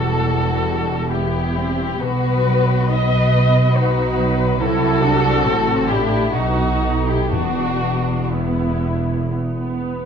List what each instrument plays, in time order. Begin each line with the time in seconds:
Already playing: double bass section E1, cello section E2, harp E3 G3 B3, viola section G3, violin section F#4 A4
0.25 viola section G3, harp E4
0.70 harp G4
1.14 viola section B3, harp B3, violin section E4 G4
1.57 harp G3, viola section C4
2.01 double bass section B1, harp B2, cello section B2, viola section B3, violin section F#4 B4
2.46 harp F#3
2.89 harp D#4, violin section B4 D#5
3.32 harp F#4
3.74 harp B3, viola section D#4, violin section F#4 B4
4.17 harp F#3
4.60 double bass section C2, cello section C3, harp C3, viola section E4, violin section F#4 A4
5.03 viola section D4, harp E4 G4
5.45 double bass section A1, harp A2, cello section A2, viola section C4
5.89 viola section D4, violin section E4 G4, harp F4 A4
6.33 double bass section B1, harp B2, cello section B2, viola section D#4, violin section D#4 F#4
6.83 harp D#4 A4
7.08 violin section E4 G4
7.31 double bass section E1, timpani E2, cello section E2, harp E3, viola section B3, violin section D4 F#4
7.82 harp B3
8.23 violin section F#4
8.32 violin section B3 E4, harp G4
8.82 harp B4
9.31 viola section B3, harp E4
9.82 harp B3